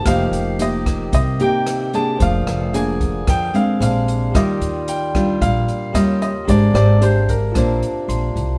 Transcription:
<<
  \new Staff \with { instrumentName = "Grand piano" } { \time 4/4 \key bes \major \tempo 4 = 112 f''4 ees''4 ees''8 g''4 a''8 | f''4 aes''4 g''8 f''8 f''4 | ees''4 g''4 f''4 ees''8 ees''8 | d''8 d''8 c''8 bes'2 r8 | }
  \new Staff \with { instrumentName = "Tine electric piano" } { \time 4/4 \key bes \major << { r1 | r1 | r1 | r2. c'''4 | } \\ { <g' bes' c'' ees''>1 | <aes' c'' d'' f''>2. <aes' c'' d'' f''>4 | <g' bes' f'' d'''>2. <g' bes' des'' f''>4 | <g' bes' c'' d''>2 <f' c'' d'' a''>2 | } >> }
  \new Staff \with { instrumentName = "Nylon-string guitar" } { \time 4/4 \key bes \major << { <bes ees' g'>4 <bes ees' g'>4 r8 <bes ees' g'>4 <bes d' aes'>8~ | <bes d' aes'>4 <bes d' aes'>4. <aes c' d'>4. | <g f'>4. <g d' f'>4. <g des' f'>8 r8 | <d' g' c''>8 <d' g' c''>8 <d' g' c''>8 r8 <d' c''>4. r8 | } \\ { f2 c2 | f2 f4 r4 | ees2 bes,4 r4 | aes2 bes2 | } >> }
  \new Staff \with { instrumentName = "Harmonium" } { \time 4/4 \key bes \major <ees g'>1 | <d aes'>2. <c d'>4 | f'2. <des f'>4 | <c d'>1 | }
  \new Staff \with { instrumentName = "Harmonium" } { \time 4/4 \key bes \major bes1~ | bes2. aes4 | g2. r4 | bes2 bes2 | }
  \new Staff \with { instrumentName = "Upright bass" } { \clef bass \time 4/4 \key bes \major f,,8 f,,4. c,8 r4. | f,,8 f,,4. f,8 r8 bes,,4 | ees,8 ees,4. bes,,8 r8 ees,4 | aes,,8 aes,,4. bes,,8 r8 bes,,8 c,8 | }
  \new DrumStaff \with { instrumentName = "Drums" } \drummode { \time 4/4 <hh bd ss>8 hh8 hh8 <hh bd ss>8 <hh bd>8 hh8 <hh ss>8 hh8 | <hh bd>8 <hh ss>8 hh8 <hh bd>8 <hh bd ss>8 hh8 hh8 hh8 | <hh bd ss>8 hh8 hh8 <hh bd ss>8 <hh bd>8 hh8 <hh ss>8 hh8 | <hh bd>8 <hh ss>8 hh8 <hh bd>8 <hh bd ss>8 hh8 hh8 hh8 | }
>>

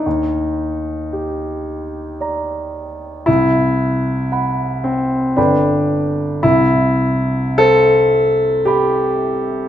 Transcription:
\new Staff \with { instrumentName = "Grand piano" } { \time 3/4 \key c \major \tempo 4 = 56 << { ees,4 g'4 <d'' bes''>4 | c,4 <fis'' b''>4 <g,, a' b' g'' b''>4 | c,4 c''4 <g'' b''>4 | } \\ { ees'2~ ees'8 r8 | e'4. c'8 d'4 | e'4 a'4 g'4 | } >> }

